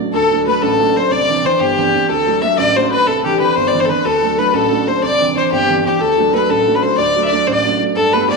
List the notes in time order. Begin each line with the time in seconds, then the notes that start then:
Already playing: F#3 A3
0.00 D4
0.13 D2 A4
0.31 F#3 A3 D4
0.47 F#3 A3 D4 B4
0.62 A1 A4
0.80 F#3 A3 D4
0.95 F#3 A3 D4 C5
1.11 C2 D5
1.29 E3 C4 D4
1.43 E3 C4 D4 C5
1.60 G1 G4
1.77 E3 C4 D4
1.94 E3 C4 D4
2.09 D2 A4
2.27 F#3 A3 D4
2.42 F#3 A3 D4 E5
2.57 A1 D5
2.76 F#3 A3 D4 C5
2.91 F#3 A3 D4 B4
3.07 C2 A4
3.24 E3 C4 D4 G4
3.40 E3 C4 D4 B4
3.56 G1 C5
3.67 D5
3.73 E3 C4 D4
3.80 C5
3.85 A4 B4
3.89 E3 C4 D4 B4
4.05 D2 A4
4.22 F#3 A3 D4
4.38 F#3 A3 D4 B4
4.54 A1 A4
4.71 F#3 A3 D4
4.86 F#3 A3 D4 C5
5.03 C2 D5
5.20 E3 C4 D4
5.36 E3 C4 D4 C5
5.52 G1 G4
5.69 E3 C4 D4
5.84 E3 C4 D4 G4
6.00 D2 A4
6.18 F#3 A3 D4
6.33 F#3 A3 D4 B4
6.50 A1 A4
6.67 F#3 A3 D4
6.75 B4
6.83 F#3 A3 D4 C5
6.97 D2 D5
7.16 F#3 A3 D4
7.22 D5 E5
7.27 D5
7.32 F#3 A3 D4
7.47 A1 C5
7.52 D5
7.65 F#3 A3 D4
7.81 F#3 A3 D4
7.96 G2 A4
8.13 G3 A3 B3 B4
8.28 G3 A3 B3 D5